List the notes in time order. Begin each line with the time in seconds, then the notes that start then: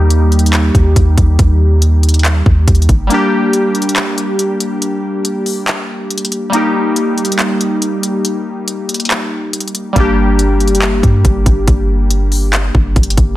Already playing: D#2 G3 A#3 D#4 G4
0.10 closed hi-hat
0.32 closed hi-hat
0.39 closed hi-hat
0.46 closed hi-hat
0.53 clap, closed hi-hat
0.75 D#2, kick, closed hi-hat
0.96 D#2, kick, closed hi-hat
1.18 D#2, kick, closed hi-hat
1.39 D#2, kick, closed hi-hat
1.82 closed hi-hat
2.03 closed hi-hat
2.09 closed hi-hat
2.14 closed hi-hat
2.19 closed hi-hat
2.25 clap, closed hi-hat
2.46 D#2, kick
2.68 D#2, kick, closed hi-hat
2.75 closed hi-hat
2.82 closed hi-hat
2.89 G1, kick, closed hi-hat
3.07 G3 A#3, closed hi-hat
3.12 D4 G4
3.53 closed hi-hat
3.75 closed hi-hat
3.82 closed hi-hat
3.89 closed hi-hat
3.96 clap, closed hi-hat
4.18 closed hi-hat
4.39 closed hi-hat
4.60 closed hi-hat
4.82 closed hi-hat
5.25 closed hi-hat
5.46 open hi-hat
5.67 clap, closed hi-hat
6.10 closed hi-hat
6.18 closed hi-hat
6.25 closed hi-hat
6.32 closed hi-hat
6.50 G3 A#3, closed hi-hat
6.54 D#4 G4
6.96 closed hi-hat
7.18 closed hi-hat
7.25 closed hi-hat
7.32 closed hi-hat
7.39 clap, closed hi-hat
7.61 closed hi-hat
7.82 closed hi-hat
8.03 closed hi-hat
8.25 closed hi-hat
8.68 closed hi-hat
8.89 closed hi-hat
8.94 closed hi-hat
9.00 closed hi-hat
9.05 closed hi-hat
9.10 clap, closed hi-hat
9.53 closed hi-hat
9.60 closed hi-hat
9.68 closed hi-hat
9.75 closed hi-hat
9.93 G1 G3 A#3, kick, closed hi-hat
9.97 D4 G4
10.39 closed hi-hat
10.60 closed hi-hat
10.68 F#1, closed hi-hat
10.75 closed hi-hat
10.82 clap, closed hi-hat
10.87 G1
11.03 G2, kick, closed hi-hat
11.25 G1, kick, closed hi-hat
11.46 G1, kick, closed hi-hat
11.68 G1, kick, closed hi-hat
12.10 closed hi-hat
12.32 open hi-hat
12.53 clap, closed hi-hat
12.75 G1, kick
12.96 G1, kick, closed hi-hat
13.03 closed hi-hat
13.10 closed hi-hat
13.17 G1, kick, closed hi-hat